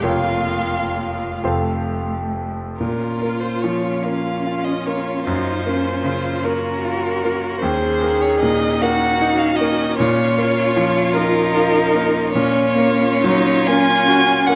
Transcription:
0.01 grand piano F1 F2 A#3 F4 C#5, cello A#3, viola F4, violin F5
1.43 grand piano F1 F2 A3 F4 C5, cello A3
2.77 grand piano A#2, viola C#4, violin F4 A#4, cello F4
3.22 grand piano A#3
3.40 violin C5
3.61 grand piano F3, violin C#5
4.04 grand piano A#3, cello C#4, violin F5
4.47 grand piano F4
4.64 violin D#5
4.86 grand piano A#3, violin C#5
5.26 grand piano F#2, cello D#4, violin C5
5.66 grand piano A#3, cello C#4
6.03 grand piano C#3, cello F4
6.44 grand piano A#3, cello F#4, violin A#4
6.85 grand piano F4
7.24 grand piano A#3
7.60 grand piano D#2, viola C#4, violin D#4 C5, cello G#4
8.02 grand piano A#3
8.21 violin C#5
8.40 grand piano A#2, violin D#5
8.81 grand piano A#3, cello F#4, violin F#5
9.21 grand piano D#4
9.38 violin F5
9.56 violin D#5
9.60 grand piano A#3
9.97 grand piano A#2, cello F4, violin F4 C#5
10.38 grand piano A#3
10.76 grand piano F3
11.13 grand piano A#3, cello D#4, violin A#4
11.55 grand piano F4
11.95 grand piano A#3
12.32 grand piano A#2, viola C#4, cello C#4, violin F4 C#5
12.75 viola A#3, grand piano A#3
13.22 grand piano F#3, viola D#4
13.67 grand piano A#3, viola C#4, violin G#5
14.08 grand piano F#4
14.47 grand piano A#3, violin F#5

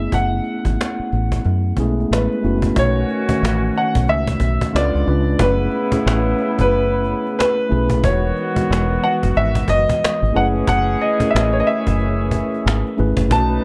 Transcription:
Already playing: tine electric piano A3 B3 C#4 E4 G#4, grand piano E5
0.12 fingered electric bass F#1, grand piano F#5, cajon bass
0.45 cajon slap
0.65 fingered electric bass G#1, cajon bass
0.81 cajon slap
0.99 muted fingered electric bass stroke
1.12 fingered electric bass A1, cajon slap
1.15 cajon slap
1.32 cajon bass
1.45 fingered electric bass F#2, cajon slap
1.76 fingered electric bass B1, tine electric piano G#3 B3 C#4 E4 G#4, cajon bass
1.83 tine electric piano A3
1.98 cajon slap
2.00 cajon slap
2.11 fingered electric bass A1, grand piano B4, cajon slap
2.32 cajon slap
2.42 fingered electric bass F#1, tine electric piano A3 B3 C#4 E4 F#4, cajon slap
2.62 cajon bass
2.75 fingered electric bass B1, horn section D#3 C#4 F#4, tine electric piano A3 C#4 D#4 F#4 B4, grand piano C#5, cajon bass
3.09 cajon slap
3.28 tine electric piano D#3 A3 C#4 F#4 C#5, cajon bass
3.43 fingered electric bass A1, cajon slap
3.76 grand piano F#5, cajon slap
3.78 cajon slap
3.95 fingered electric bass B1, cajon bass
4.07 fingered electric bass C#2, grand piano E5, cajon slap
4.27 cajon bass
4.40 fingered electric bass B1, cajon bass
4.61 cajon bass, cajon slap
4.73 fingered electric bass C#2, horn section D3 B3 F4, tine electric piano G#3 C#4 D4 F4 B4, grand piano D5, cajon slap
4.95 fingered electric bass C#2, cajon slap
5.06 fingered electric bass C#2, tine electric piano G#3 C#4 D4 F4 B4, cajon slap
5.27 cajon slap
5.38 fingered electric bass F#1, horn section C#3 B3 E4, tine electric piano A3 C#4 E4 G#4 B4, grand piano B4, cajon bass
5.72 cajon slap
5.91 tine electric piano A3 C#4 E4 G#4 C#5, cajon bass
6.06 fingered electric bass A1, cajon slap
6.39 cajon slap
6.41 cajon slap
6.59 fingered electric bass F#1, grand piano B4, cajon bass
6.71 cajon slap
7.04 cajon slap
7.25 cajon slap
7.27 cajon slap
7.39 grand piano B4, cajon slap
7.60 cajon slap
7.69 fingered electric bass B1, tine electric piano A3 C#4 E4 G#4 B4, cajon slap
7.90 cajon bass
8.02 fingered electric bass E1, horn section D#3 B3 F#4, tine electric piano E3 G#3 D#4 F#4 B4, grand piano C#5, cajon bass
8.37 cajon slap
8.55 tine electric piano E3 G#3 B3 F#4 B4, cajon bass
8.71 fingered electric bass E1, cajon slap
9.04 grand piano F#5, cajon slap
9.06 cajon slap
9.23 fingered electric bass F#1, cajon bass
9.35 fingered electric bass G#1, grand piano E5, cajon slap
9.55 cajon bass
9.68 fingered electric bass F#1, grand piano D#5, cajon bass
9.89 cajon bass, cajon slap
10.04 cajon slap
10.23 fingered electric bass G#1, cajon slap
10.33 fingered electric bass F#1, horn section E3 C#4 G#4, tine electric piano A3 C#4 E4 G#4 B4, grand piano F#5, cajon slap
10.56 cajon slap
10.67 fingered electric bass F#1, grand piano F#5, cajon bass
11.00 grand piano D#5, cajon slap
11.19 tine electric piano A3 C#4 E4 G#4 A#4, cajon bass
11.29 tine electric piano B4, grand piano E5
11.35 fingered electric bass A1, cajon slap
11.41 grand piano D#5
11.53 grand piano C#5
11.60 grand piano D#5
11.67 grand piano E5, cajon slap
11.69 cajon slap
11.87 fingered electric bass F#1, cajon bass
11.99 cajon slap
12.31 cajon bass
12.52 cajon slap
12.54 cajon slap
12.66 fingered electric bass G#1, cajon slap
12.87 cajon slap
12.97 fingered electric bass G#1, tine electric piano A3 C#4 E4 G#4 B4, cajon slap
13.17 fingered electric bass F#1, cajon bass
13.30 fingered electric bass B1, horn section F#3 D#4 B4, tine electric piano A3 C#4 D#4 F#4 B4, grand piano A5, cajon bass

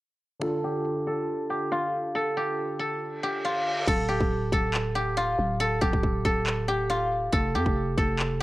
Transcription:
0.40 synth keys D3 D4 F4, guzheng A4
0.44 synth keys A4
0.64 guzheng G4
1.07 guzheng A4
1.50 guzheng G4
1.72 guzheng F4
2.15 guzheng A4
2.37 guzheng G4
2.79 guzheng A4
3.01 reverse cymbal
3.23 guzheng G4
3.45 guzheng F4
3.87 808-style bass D1, guzheng A4, kick, crash
4.09 guzheng G4
4.21 808-style bass D1, kick
4.52 808-style bass D1, guzheng A4, kick
4.74 clap
4.95 guzheng G4
5.17 guzheng F4
5.39 808-style bass D1
5.60 guzheng A4
5.81 808-style bass D1, guzheng G4, kick
5.93 808-style bass D1, kick
6.03 808-style bass D1, kick
6.25 808-style bass D1, guzheng A4, kick
6.47 clap
6.68 guzheng G4
6.90 guzheng F4
7.32 808-style bass F1, guzheng A4, kick
7.54 808-style bass F2, guzheng G4
7.66 808-style bass F1, kick
7.98 808-style bass F1, guzheng A4, kick
8.19 clap

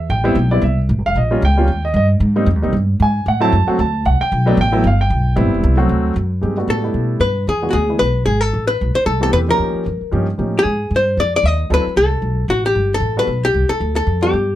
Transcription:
0.10 upright bass A1, grand piano G5
0.24 grand piano G3 B3 C4 E4
0.35 upright bass B1
0.51 grand piano G3 B3 C4 E4 D5
0.61 upright bass C2, grand piano E5
0.89 upright bass A1
0.98 upright bass G1
1.06 upright bass E1, grand piano F5
1.16 upright bass A#1, grand piano D#5
1.31 grand piano G3 A#3 C#4 F4
1.42 upright bass C#2, grand piano G5
1.57 grand piano G3 A#3 C#4 F4
1.67 upright bass D#2
1.85 grand piano D#5
1.94 upright bass G2, grand piano D#5
2.20 upright bass G#2
2.36 grand piano G3 A#3 C4 D#4
2.46 upright bass F2
2.55 upright bass D#2
2.62 upright bass C2, grand piano G3 A#3 C4 D#4
2.73 upright bass G2
3.00 upright bass G#2, grand piano G#5
3.26 upright bass A2, grand piano F#5
3.40 grand piano F#3 A3 C4 E4 A5
3.52 upright bass F#2
3.67 grand piano F#3 A3 C4 F#4, muted upright bass stroke
3.79 upright bass D2, grand piano A5
4.05 upright bass C2, grand piano F#5
4.21 grand piano G5, muted upright bass stroke
4.32 upright bass B1
4.46 grand piano F#3 A3 B3 D4
4.57 upright bass A1, grand piano G5
4.72 grand piano F#3 A3 B3 E4
4.84 upright bass G1, grand piano F5
5.01 grand piano G5
5.10 upright bass B1
5.36 upright bass A1, grand piano G3 B3 C4 E4
5.46 upright bass G1
5.54 upright bass E1
5.64 upright bass C2
5.77 grand piano F#3 A3 C4 F#4
5.89 upright bass D2
6.16 upright bass F#2
6.41 upright bass G2, grand piano G#3 A#3 C4 D#4 G4
6.57 grand piano G3 A3 B3 D4 F#4
6.68 upright bass A2, hollow-body jazz guitar A4
6.83 grand piano G3 A3 B3 D4 E4
6.94 upright bass B2
7.20 upright bass G2, hollow-body jazz guitar B4
7.47 upright bass E2, hollow-body jazz guitar G#4
7.62 grand piano E3 G#3 B3 D4 F#4
7.71 upright bass D2, hollow-body jazz guitar F#4 G#4
7.89 grand piano E3 G#3 B3 D4 E4
7.99 upright bass B1, hollow-body jazz guitar B4
8.26 upright bass G#1, hollow-body jazz guitar G#4
8.41 hollow-body jazz guitar A4
8.54 upright bass A1
8.67 hollow-body jazz guitar B4
8.81 upright bass B1
8.95 hollow-body jazz guitar C5, muted upright bass stroke
9.06 upright bass C2, hollow-body jazz guitar A4
9.21 grand piano E3 A3 B3 C4 G4, hollow-body jazz guitar A4
9.33 upright bass E2, hollow-body jazz guitar B4
9.48 grand piano F3 A#3 C#4 D#4 G4, hollow-body jazz guitar A#4
9.59 upright bass D#2
9.74 muted upright bass stroke
9.86 upright bass F2
10.01 muted upright bass stroke
10.12 upright bass G2, grand piano F3 A#3 C#4 D#4 G4
10.38 upright bass A2, grand piano F3 A#3 C#4 D#4 G4
10.59 hollow-body jazz guitar G#4
10.65 upright bass G#2
10.91 upright bass G2
10.96 hollow-body jazz guitar C5
11.17 upright bass F2, hollow-body jazz guitar D5
11.36 hollow-body jazz guitar D5
11.43 upright bass D#2, hollow-body jazz guitar D#5
11.70 upright bass D2, grand piano F#3 C4 D4 E4 A4, hollow-body jazz guitar B4
11.86 muted upright bass stroke
11.96 upright bass C2, hollow-body jazz guitar A4
12.22 upright bass B1
12.48 upright bass A1, hollow-body jazz guitar F#4
12.66 hollow-body jazz guitar G4
12.75 upright bass G1
12.94 hollow-body jazz guitar A4
13.00 upright bass A1
13.17 grand piano G3 B3 D4 F#4 A4, hollow-body jazz guitar B4
13.27 upright bass B1
13.45 hollow-body jazz guitar G4
13.54 upright bass C2
13.69 hollow-body jazz guitar A4
13.80 upright bass D2
13.96 hollow-body jazz guitar A4
14.07 upright bass F2
14.22 grand piano G3 B3 D4 F4 A4, hollow-body jazz guitar G4
14.33 upright bass G2

